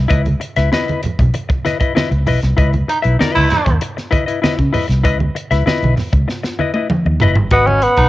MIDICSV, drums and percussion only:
0, 0, Header, 1, 2, 480
1, 0, Start_track
1, 0, Tempo, 616650
1, 89, Time_signature, 4, 2, 24, 8
1, 6296, End_track
2, 0, Start_track
2, 0, Title_t, "Drums"
2, 81, Note_on_c, 9, 42, 83
2, 83, Note_on_c, 9, 36, 108
2, 94, Note_on_c, 9, 62, 35
2, 159, Note_off_c, 9, 42, 0
2, 160, Note_off_c, 9, 36, 0
2, 172, Note_off_c, 9, 62, 0
2, 198, Note_on_c, 9, 42, 35
2, 203, Note_on_c, 9, 62, 35
2, 203, Note_on_c, 9, 63, 72
2, 276, Note_off_c, 9, 42, 0
2, 281, Note_off_c, 9, 62, 0
2, 281, Note_off_c, 9, 63, 0
2, 319, Note_on_c, 9, 42, 80
2, 397, Note_off_c, 9, 42, 0
2, 437, Note_on_c, 9, 42, 50
2, 448, Note_on_c, 9, 38, 35
2, 515, Note_off_c, 9, 42, 0
2, 526, Note_off_c, 9, 38, 0
2, 565, Note_on_c, 9, 38, 115
2, 567, Note_on_c, 9, 63, 67
2, 643, Note_off_c, 9, 38, 0
2, 645, Note_off_c, 9, 63, 0
2, 684, Note_on_c, 9, 42, 34
2, 695, Note_on_c, 9, 62, 35
2, 695, Note_on_c, 9, 63, 76
2, 762, Note_off_c, 9, 42, 0
2, 773, Note_off_c, 9, 62, 0
2, 773, Note_off_c, 9, 63, 0
2, 799, Note_on_c, 9, 42, 74
2, 818, Note_on_c, 9, 64, 75
2, 877, Note_off_c, 9, 42, 0
2, 896, Note_off_c, 9, 64, 0
2, 926, Note_on_c, 9, 36, 89
2, 930, Note_on_c, 9, 42, 54
2, 939, Note_on_c, 9, 64, 70
2, 1003, Note_off_c, 9, 36, 0
2, 1007, Note_off_c, 9, 42, 0
2, 1017, Note_off_c, 9, 64, 0
2, 1041, Note_on_c, 9, 42, 87
2, 1053, Note_on_c, 9, 62, 39
2, 1119, Note_off_c, 9, 42, 0
2, 1131, Note_off_c, 9, 62, 0
2, 1165, Note_on_c, 9, 36, 97
2, 1165, Note_on_c, 9, 42, 33
2, 1165, Note_on_c, 9, 62, 36
2, 1243, Note_off_c, 9, 36, 0
2, 1243, Note_off_c, 9, 42, 0
2, 1243, Note_off_c, 9, 62, 0
2, 1289, Note_on_c, 9, 42, 83
2, 1289, Note_on_c, 9, 63, 74
2, 1293, Note_on_c, 9, 38, 36
2, 1366, Note_off_c, 9, 63, 0
2, 1367, Note_off_c, 9, 42, 0
2, 1371, Note_off_c, 9, 38, 0
2, 1404, Note_on_c, 9, 42, 63
2, 1406, Note_on_c, 9, 36, 85
2, 1482, Note_off_c, 9, 42, 0
2, 1484, Note_off_c, 9, 36, 0
2, 1530, Note_on_c, 9, 62, 37
2, 1530, Note_on_c, 9, 63, 80
2, 1532, Note_on_c, 9, 38, 112
2, 1608, Note_off_c, 9, 62, 0
2, 1608, Note_off_c, 9, 63, 0
2, 1610, Note_off_c, 9, 38, 0
2, 1647, Note_on_c, 9, 42, 31
2, 1649, Note_on_c, 9, 62, 34
2, 1724, Note_off_c, 9, 42, 0
2, 1727, Note_off_c, 9, 62, 0
2, 1764, Note_on_c, 9, 64, 73
2, 1766, Note_on_c, 9, 46, 68
2, 1842, Note_off_c, 9, 64, 0
2, 1844, Note_off_c, 9, 46, 0
2, 1889, Note_on_c, 9, 42, 57
2, 1893, Note_on_c, 9, 38, 38
2, 1966, Note_off_c, 9, 42, 0
2, 1971, Note_off_c, 9, 38, 0
2, 2007, Note_on_c, 9, 42, 77
2, 2009, Note_on_c, 9, 36, 98
2, 2014, Note_on_c, 9, 62, 34
2, 2085, Note_off_c, 9, 42, 0
2, 2087, Note_off_c, 9, 36, 0
2, 2092, Note_off_c, 9, 62, 0
2, 2128, Note_on_c, 9, 42, 34
2, 2132, Note_on_c, 9, 62, 35
2, 2132, Note_on_c, 9, 63, 77
2, 2206, Note_off_c, 9, 42, 0
2, 2210, Note_off_c, 9, 62, 0
2, 2210, Note_off_c, 9, 63, 0
2, 2252, Note_on_c, 9, 42, 80
2, 2330, Note_off_c, 9, 42, 0
2, 2367, Note_on_c, 9, 42, 49
2, 2445, Note_off_c, 9, 42, 0
2, 2495, Note_on_c, 9, 38, 102
2, 2500, Note_on_c, 9, 62, 34
2, 2500, Note_on_c, 9, 63, 72
2, 2573, Note_off_c, 9, 38, 0
2, 2577, Note_off_c, 9, 62, 0
2, 2577, Note_off_c, 9, 63, 0
2, 2611, Note_on_c, 9, 42, 36
2, 2626, Note_on_c, 9, 63, 75
2, 2689, Note_off_c, 9, 42, 0
2, 2704, Note_off_c, 9, 63, 0
2, 2726, Note_on_c, 9, 42, 69
2, 2737, Note_on_c, 9, 38, 37
2, 2740, Note_on_c, 9, 64, 76
2, 2804, Note_off_c, 9, 42, 0
2, 2815, Note_off_c, 9, 38, 0
2, 2818, Note_off_c, 9, 64, 0
2, 2851, Note_on_c, 9, 36, 92
2, 2856, Note_on_c, 9, 42, 53
2, 2862, Note_on_c, 9, 64, 81
2, 2929, Note_off_c, 9, 36, 0
2, 2934, Note_off_c, 9, 42, 0
2, 2940, Note_off_c, 9, 64, 0
2, 2967, Note_on_c, 9, 42, 96
2, 3045, Note_off_c, 9, 42, 0
2, 3098, Note_on_c, 9, 62, 32
2, 3099, Note_on_c, 9, 42, 37
2, 3101, Note_on_c, 9, 38, 38
2, 3176, Note_off_c, 9, 62, 0
2, 3177, Note_off_c, 9, 42, 0
2, 3179, Note_off_c, 9, 38, 0
2, 3211, Note_on_c, 9, 36, 80
2, 3213, Note_on_c, 9, 42, 81
2, 3213, Note_on_c, 9, 63, 73
2, 3289, Note_off_c, 9, 36, 0
2, 3291, Note_off_c, 9, 42, 0
2, 3291, Note_off_c, 9, 63, 0
2, 3332, Note_on_c, 9, 42, 62
2, 3410, Note_off_c, 9, 42, 0
2, 3455, Note_on_c, 9, 38, 127
2, 3457, Note_on_c, 9, 62, 35
2, 3457, Note_on_c, 9, 63, 78
2, 3533, Note_off_c, 9, 38, 0
2, 3535, Note_off_c, 9, 62, 0
2, 3535, Note_off_c, 9, 63, 0
2, 3568, Note_on_c, 9, 42, 36
2, 3571, Note_on_c, 9, 36, 82
2, 3574, Note_on_c, 9, 62, 34
2, 3646, Note_off_c, 9, 42, 0
2, 3649, Note_off_c, 9, 36, 0
2, 3652, Note_off_c, 9, 62, 0
2, 3689, Note_on_c, 9, 46, 78
2, 3694, Note_on_c, 9, 64, 84
2, 3767, Note_off_c, 9, 46, 0
2, 3772, Note_off_c, 9, 64, 0
2, 3816, Note_on_c, 9, 42, 53
2, 3820, Note_on_c, 9, 38, 38
2, 3894, Note_off_c, 9, 42, 0
2, 3898, Note_off_c, 9, 38, 0
2, 3930, Note_on_c, 9, 42, 88
2, 3931, Note_on_c, 9, 36, 113
2, 4008, Note_off_c, 9, 42, 0
2, 4009, Note_off_c, 9, 36, 0
2, 4050, Note_on_c, 9, 62, 35
2, 4050, Note_on_c, 9, 63, 79
2, 4128, Note_off_c, 9, 62, 0
2, 4128, Note_off_c, 9, 63, 0
2, 4174, Note_on_c, 9, 42, 82
2, 4252, Note_off_c, 9, 42, 0
2, 4294, Note_on_c, 9, 42, 52
2, 4305, Note_on_c, 9, 38, 34
2, 4372, Note_off_c, 9, 42, 0
2, 4383, Note_off_c, 9, 38, 0
2, 4412, Note_on_c, 9, 63, 80
2, 4419, Note_on_c, 9, 38, 117
2, 4490, Note_off_c, 9, 63, 0
2, 4497, Note_off_c, 9, 38, 0
2, 4534, Note_on_c, 9, 42, 33
2, 4545, Note_on_c, 9, 62, 38
2, 4545, Note_on_c, 9, 63, 81
2, 4612, Note_off_c, 9, 42, 0
2, 4623, Note_off_c, 9, 62, 0
2, 4623, Note_off_c, 9, 63, 0
2, 4647, Note_on_c, 9, 46, 56
2, 4653, Note_on_c, 9, 64, 74
2, 4658, Note_on_c, 9, 38, 34
2, 4725, Note_off_c, 9, 46, 0
2, 4731, Note_off_c, 9, 64, 0
2, 4736, Note_off_c, 9, 38, 0
2, 4771, Note_on_c, 9, 36, 98
2, 4779, Note_on_c, 9, 42, 52
2, 4849, Note_off_c, 9, 36, 0
2, 4857, Note_off_c, 9, 42, 0
2, 4898, Note_on_c, 9, 38, 50
2, 4975, Note_off_c, 9, 38, 0
2, 5012, Note_on_c, 9, 62, 37
2, 5015, Note_on_c, 9, 38, 60
2, 5090, Note_off_c, 9, 62, 0
2, 5093, Note_off_c, 9, 38, 0
2, 5131, Note_on_c, 9, 63, 81
2, 5209, Note_off_c, 9, 63, 0
2, 5245, Note_on_c, 9, 48, 68
2, 5323, Note_off_c, 9, 48, 0
2, 5368, Note_on_c, 9, 47, 103
2, 5374, Note_on_c, 9, 62, 32
2, 5374, Note_on_c, 9, 63, 72
2, 5446, Note_off_c, 9, 47, 0
2, 5452, Note_off_c, 9, 62, 0
2, 5452, Note_off_c, 9, 63, 0
2, 5494, Note_on_c, 9, 62, 36
2, 5572, Note_off_c, 9, 62, 0
2, 5603, Note_on_c, 9, 43, 94
2, 5608, Note_on_c, 9, 64, 78
2, 5681, Note_off_c, 9, 43, 0
2, 5686, Note_off_c, 9, 64, 0
2, 5724, Note_on_c, 9, 43, 94
2, 5802, Note_off_c, 9, 43, 0
2, 5842, Note_on_c, 9, 42, 86
2, 5847, Note_on_c, 9, 36, 99
2, 5854, Note_on_c, 9, 62, 38
2, 5920, Note_off_c, 9, 42, 0
2, 5925, Note_off_c, 9, 36, 0
2, 5932, Note_off_c, 9, 62, 0
2, 5972, Note_on_c, 9, 62, 36
2, 5972, Note_on_c, 9, 63, 80
2, 6049, Note_off_c, 9, 62, 0
2, 6049, Note_off_c, 9, 63, 0
2, 6086, Note_on_c, 9, 42, 85
2, 6164, Note_off_c, 9, 42, 0
2, 6202, Note_on_c, 9, 42, 53
2, 6208, Note_on_c, 9, 36, 90
2, 6280, Note_off_c, 9, 42, 0
2, 6286, Note_off_c, 9, 36, 0
2, 6296, End_track
0, 0, End_of_file